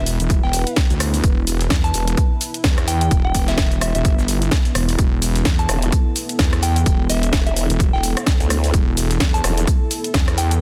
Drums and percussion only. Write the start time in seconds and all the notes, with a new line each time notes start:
0.06 open hi-hat, tambourine, cabasa
0.20 closed hi-hat, cabasa
0.30 kick, closed hi-hat, tambourine, cabasa
0.43 snare
0.53 open hi-hat, tambourine, cabasa
0.67 closed hi-hat, cabasa
0.76 kick, snare, closed hi-hat, tambourine, cabasa
0.90 closed hi-hat, cabasa
1.00 cross-stick, open hi-hat, tambourine, cabasa
1.14 closed hi-hat, open hi-hat, cabasa
1.24 kick, closed hi-hat, tambourine, cabasa
1.47 open hi-hat, tambourine, cabasa
1.61 snare, closed hi-hat, cabasa
1.70 kick, snare, closed hi-hat, tambourine, cabasa
1.84 closed hi-hat, cabasa
1.94 open hi-hat, tambourine, cabasa
2.08 closed hi-hat, cabasa
2.17 kick, closed hi-hat, tambourine, cabasa
2.41 open hi-hat, tambourine, cabasa
2.54 closed hi-hat, cabasa
2.64 kick, snare, closed hi-hat, tambourine, cabasa
2.78 cross-stick, closed hi-hat, cabasa
2.88 open hi-hat, tambourine, cabasa
3.01 closed hi-hat, cabasa
3.11 kick, closed hi-hat, tambourine, cabasa
3.35 kick, open hi-hat, tambourine, cabasa
3.48 snare, closed hi-hat, cabasa
3.58 kick, snare, closed hi-hat, tambourine, cabasa
3.71 closed hi-hat, cabasa
3.81 cross-stick, open hi-hat, tambourine, cabasa
3.95 closed hi-hat, cabasa
4.05 kick, closed hi-hat, tambourine, cabasa
4.18 snare, cabasa
4.28 open hi-hat, tambourine, cabasa
4.42 closed hi-hat, cabasa
4.51 kick, snare, closed hi-hat, tambourine, cabasa
4.65 closed hi-hat, cabasa
4.75 cross-stick, open hi-hat, tambourine, cabasa
4.89 closed hi-hat, open hi-hat, cabasa
4.99 kick, closed hi-hat, tambourine, cabasa
5.22 open hi-hat, tambourine, cabasa
5.36 snare, closed hi-hat, cabasa
5.45 kick, snare, closed hi-hat, tambourine, cabasa
5.59 closed hi-hat, cabasa
5.69 cross-stick, open hi-hat, tambourine, cabasa
5.82 closed hi-hat, cabasa
5.92 kick, closed hi-hat, tambourine, cabasa
6.16 open hi-hat, tambourine, cabasa
6.29 closed hi-hat, cabasa
6.39 kick, snare, closed hi-hat, tambourine, cabasa
6.53 cross-stick, closed hi-hat, cabasa
6.63 open hi-hat, tambourine, cabasa
6.76 closed hi-hat, cabasa
6.86 kick, closed hi-hat, tambourine, cabasa
7.10 open hi-hat, tambourine, cabasa
7.23 closed hi-hat, cabasa
7.33 kick, snare, closed hi-hat, tambourine, cabasa
7.47 closed hi-hat, cabasa
7.57 open hi-hat, tambourine, cabasa
7.70 closed hi-hat, cabasa
7.80 kick, closed hi-hat, tambourine, cabasa
7.93 snare
8.03 open hi-hat, tambourine, cabasa
8.17 cross-stick, closed hi-hat, cabasa
8.26 kick, snare, closed hi-hat, tambourine, cabasa
8.40 closed hi-hat, cabasa
8.50 cross-stick, open hi-hat, tambourine, cabasa
8.64 closed hi-hat, open hi-hat, cabasa
8.74 kick, closed hi-hat, tambourine, cabasa
8.97 open hi-hat, tambourine, cabasa
9.11 snare, closed hi-hat, cabasa
9.20 kick, snare, closed hi-hat, tambourine, cabasa
9.34 closed hi-hat, cabasa
9.44 cross-stick, open hi-hat, tambourine, cabasa
9.58 closed hi-hat, cabasa
9.67 kick, closed hi-hat, tambourine, cabasa
9.91 open hi-hat, tambourine, cabasa
10.04 closed hi-hat, cabasa
10.14 kick, snare, closed hi-hat, tambourine, cabasa
10.28 cross-stick, closed hi-hat, cabasa
10.38 open hi-hat, tambourine, cabasa
10.51 closed hi-hat, cabasa